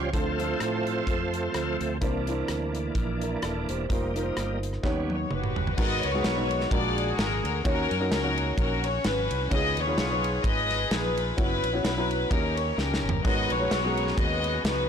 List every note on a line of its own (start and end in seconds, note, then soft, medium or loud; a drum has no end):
0.00 0.10 C#2 medium
0.00 0.10 C#4 medium
0.00 0.10 F4 medium
0.00 0.10 G4 medium
0.00 0.15 C#5 medium
0.13 0.53 D2 medium
0.13 0.83 D3 soft
0.13 1.97 F3 soft
0.13 0.31 A3 medium
0.13 1.98 A3 soft
0.13 1.98 C4 soft
0.13 0.32 D4 soft
0.13 1.77 F4 medium
0.13 0.32 F4 medium
0.13 1.77 A4 medium
0.13 1.77 C5 medium
0.13 0.32 C5 medium
0.13 kick loud
0.13 closed hi-hat medium
0.39 1.03 A3 medium
0.39 1.03 D4 medium
0.39 1.03 F4 medium
0.39 1.04 C5 medium
0.39 closed hi-hat medium
0.60 1.01 A2 medium
0.60 cross-stick loud
0.60 closed hi-hat medium
0.87 closed hi-hat medium
1.07 1.47 F2 medium
1.07 kick loud
1.07 closed hi-hat medium
1.34 closed hi-hat medium
1.54 1.77 D2 medium
1.54 cross-stick loud
1.54 closed hi-hat medium
1.81 1.99 D2 medium
1.81 closed hi-hat medium
2.01 2.42 C2 medium
2.01 2.71 C3 medium
2.01 3.86 E3 soft
2.01 2.19 A#3 medium
2.01 3.86 A#3 soft
2.01 2.19 D4 medium
2.01 3.87 D4 soft
2.01 2.20 E4 medium
2.01 2.20 C5 medium
2.01 kick loud
2.01 closed hi-hat medium
2.27 2.91 A#3 medium
2.27 2.91 D4 medium
2.27 2.92 E4 medium
2.27 2.92 C5 medium
2.27 closed hi-hat medium
2.48 2.89 D2 medium
2.48 cross-stick medium
2.48 closed hi-hat medium
2.75 closed hi-hat medium
2.95 3.36 A#1 medium
2.95 kick medium
2.95 closed hi-hat medium
3.21 3.43 A#4 soft
3.21 3.42 E5 medium
3.21 closed hi-hat medium
3.42 3.65 D#1 medium
3.42 3.68 A4 medium
3.42 3.68 D5 medium
3.42 cross-stick loud
3.42 closed hi-hat medium
3.69 3.87 E1 medium
3.69 4.14 G4 soft
3.69 3.89 C5 medium
3.69 closed hi-hat medium
3.89 4.30 F1 loud
3.89 4.59 G3 soft
3.89 4.07 A#3 medium
3.89 4.59 A#3 soft
3.89 4.08 D#4 medium
3.89 4.60 D#4 medium
3.89 4.08 F4 medium
3.89 4.08 C5 medium
3.89 kick loud
3.89 closed hi-hat medium
4.15 4.79 A#3 medium
4.15 4.79 D#4 medium
4.15 4.80 F4 medium
4.15 4.22 A#4 medium
4.15 closed hi-hat medium
4.23 4.83 C5 medium
4.37 4.77 G1 medium
4.37 cross-stick medium
4.37 closed hi-hat medium
4.63 closed hi-hat medium
4.73 cross-stick soft
4.83 5.24 D#2 medium
4.83 5.53 D#3 medium
4.83 5.16 G3 soft
4.83 5.61 B3 medium
4.83 5.17 B3 soft
4.83 5.17 C#4 soft
4.83 5.61 D#4 medium
4.83 5.61 G4 medium
4.83 5.62 C#5 medium
4.83 kick loud
4.83 snare soft
5.10 5.31 C#5 medium
5.10 high tom medium
5.31 5.54 F#1 medium
5.31 5.75 F#4 medium
5.31 5.75 G4 medium
5.31 5.78 B4 medium
5.31 mid tom medium
5.44 mid tom medium
5.56 5.75 G1 medium
5.56 floor tom medium
5.67 floor tom medium
5.77 6.00 G#1 loud
5.77 6.47 G#2 medium
5.77 6.04 G#3 medium
5.77 6.05 B3 medium
5.77 6.05 D#4 medium
5.77 6.05 F#4 medium
5.77 6.04 F#4 medium
5.77 6.05 A#4 medium
5.77 6.68 B4 loud
5.77 6.05 D#5 loud
5.77 kick loud
5.77 crash loud
6.03 6.22 C#2 medium
6.03 6.68 F#4 medium
6.03 6.68 A#4 medium
6.03 6.72 C#5 loud
6.03 ride medium
6.14 6.30 G#3 medium
6.14 6.30 B3 medium
6.14 6.30 D#4 medium
6.14 6.30 F#4 medium
6.14 6.31 G#4 medium
6.24 6.65 B1 loud
6.24 snare loud
6.24 ride medium
6.37 6.69 G#3 medium
6.37 6.71 B3 medium
6.37 6.71 D#4 medium
6.37 6.71 F#4 medium
6.37 6.72 C#5 medium
6.51 ride medium
6.61 snare soft
6.71 7.11 A#1 loud
6.71 7.40 A#2 medium
6.71 7.48 G#3 medium
6.71 7.48 A#3 medium
6.71 7.49 D4 medium
6.71 7.61 F#4 medium
6.71 7.49 F#4 medium
6.71 7.61 G#4 medium
6.71 7.49 A#4 medium
6.71 7.15 D5 loud
6.71 kick loud
6.71 ride medium
6.98 ride medium
7.18 7.40 G#1 loud
7.18 7.43 A#4 loud
7.18 snare loud
7.18 ride medium
7.44 7.62 D2 loud
7.44 7.64 A#4 medium
7.44 ride medium
7.64 7.87 D#2 loud
7.64 8.33 D#3 medium
7.64 7.91 A#3 medium
7.64 7.91 C#4 medium
7.64 8.10 C#4 medium
7.64 7.92 D#4 medium
7.64 7.92 F#4 medium
7.64 8.10 F#4 medium
7.64 8.09 A#4 loud
7.64 7.92 C#5 medium
7.64 kick loud
7.64 ride medium
7.91 8.09 F#2 loud
7.91 ride medium
8.00 8.16 A#3 medium
8.00 8.16 C#4 medium
8.00 8.16 D#4 medium
8.00 8.17 F#4 medium
8.00 8.17 A#4 medium
8.11 8.52 C#2 loud
8.11 8.58 C#4 medium
8.11 8.58 F#4 medium
8.11 8.55 A#4 loud
8.11 snare loud
8.11 ride medium
8.24 8.90 A#3 medium
8.24 8.90 C#4 medium
8.24 8.90 D#4 medium
8.24 8.90 F#4 medium
8.24 8.90 C#5 medium
8.38 ride medium
8.58 8.98 A#1 loud
8.58 9.48 C#4 medium
8.58 9.05 F#4 medium
8.58 8.83 A#4 loud
8.58 kick loud
8.58 ride medium
8.84 9.05 C#5 loud
8.84 ride medium
9.04 9.27 G#1 loud
9.04 9.49 F#4 medium
9.04 9.51 B4 loud
9.04 snare loud
9.04 ride medium
9.31 9.49 C2 loud
9.31 ride medium
9.50 9.73 C#2 loud
9.50 10.20 C#3 medium
9.50 9.78 B3 medium
9.50 9.78 D#4 medium
9.50 9.78 F4 medium
9.50 9.78 G#4 medium
9.50 9.77 G#4 medium
9.50 10.41 B4 medium
9.50 9.78 C#5 medium
9.50 9.76 D#5 loud
9.50 kick loud
9.50 ride medium
9.77 9.95 D#2 medium
9.77 10.67 F4 medium
9.77 10.44 G#4 medium
9.77 10.45 C#5 loud
9.77 ride medium
9.87 10.03 B3 medium
9.87 10.03 D#4 medium
9.87 10.03 F4 medium
9.87 10.04 G#4 medium
9.87 10.04 C#5 medium
9.98 10.38 B1 loud
9.98 snare loud
9.98 ride medium
10.10 10.76 B3 medium
10.10 10.76 D#4 medium
10.10 10.76 F4 medium
10.10 10.77 G#4 medium
10.10 10.77 C#5 medium
10.24 ride medium
10.44 10.84 G#1 medium
10.44 11.34 G#4 medium
10.44 10.92 B4 medium
10.44 10.92 D#5 loud
10.44 kick loud
10.44 ride medium
10.70 snare soft
10.70 ride medium
10.91 11.31 A#1 medium
10.91 11.36 D#4 medium
10.91 11.35 F4 medium
10.91 11.37 B4 loud
10.91 snare loud
10.91 ride medium
11.17 ride medium
11.37 11.60 F#1 loud
11.37 11.64 B3 medium
11.37 11.64 C#4 medium
11.37 11.65 E4 medium
11.37 11.83 E4 medium
11.37 11.65 F#4 medium
11.37 11.82 B4 loud
11.37 11.65 C#5 medium
11.37 kick loud
11.37 ride medium
11.64 11.82 A#1 medium
11.64 ride medium
11.73 11.89 B3 medium
11.73 11.89 C#4 medium
11.73 11.90 E4 medium
11.73 11.90 F#4 medium
11.73 11.90 C#5 medium
11.84 12.24 B1 medium
11.84 12.28 E4 medium
11.84 12.28 B4 loud
11.84 snare loud
11.84 ride medium
11.97 12.31 B3 medium
11.97 12.29 C#4 medium
11.97 12.31 E4 medium
11.97 12.32 F#4 medium
11.97 12.32 A#5 medium
12.11 ride medium
12.30 12.71 D#2 loud
12.30 13.00 D#3 medium
12.30 13.08 A#3 medium
12.30 13.08 C#4 medium
12.30 12.76 C#4 medium
12.30 13.08 D#4 medium
12.30 12.77 G4 medium
12.30 13.08 G4 medium
12.30 12.57 A#4 loud
12.30 13.08 C#5 medium
12.30 kick loud
12.30 ride medium
12.56 12.78 C#5 medium
12.56 ride medium
12.77 13.00 C#2 medium
12.77 13.21 C#4 medium
12.77 13.21 G4 medium
12.77 13.25 A#4 loud
12.77 snare medium
12.94 snare medium
13.04 13.22 G1 medium
13.09 floor tom loud
13.24 13.47 G#1 loud
13.24 13.94 G#2 medium
13.24 14.89 G#3 medium
13.24 13.51 G#3 medium
13.24 14.89 B3 medium
13.24 13.52 B3 medium
13.24 14.89 C#4 medium
13.24 13.52 C#4 medium
13.24 14.89 F#4 medium
13.24 13.50 F#4 medium
13.24 13.52 F#4 medium
13.24 13.29 G#4 medium
13.24 13.52 A#4 medium
13.24 14.14 B4 medium
13.24 13.49 D#5 loud
13.24 kick loud
13.24 splash medium
13.30 14.89 G#4 medium
13.50 13.69 A#1 medium
13.50 14.19 F#4 medium
13.50 14.40 A#4 medium
13.50 14.18 C#5 loud
13.50 ride medium
13.60 13.76 G#3 medium
13.60 13.76 B3 medium
13.60 13.76 C#4 medium
13.60 13.76 F#4 medium
13.60 13.77 C#5 medium
13.71 14.11 B1 loud
13.71 snare loud
13.71 ride medium
13.83 14.50 G#3 medium
13.83 14.49 B3 medium
13.83 14.50 C#4 medium
13.83 14.50 F#4 medium
13.83 14.50 G#4 medium
13.97 ride medium
14.07 snare soft
14.18 14.58 D#2 medium
14.18 14.65 F#4 medium
14.18 14.65 B4 medium
14.18 14.62 D#5 loud
14.18 kick loud
14.18 ride medium
14.44 ride medium
14.64 14.87 C#2 loud
14.64 14.89 D#4 medium
14.64 14.89 F#4 medium
14.64 14.89 B4 loud
14.64 snare loud
14.64 ride medium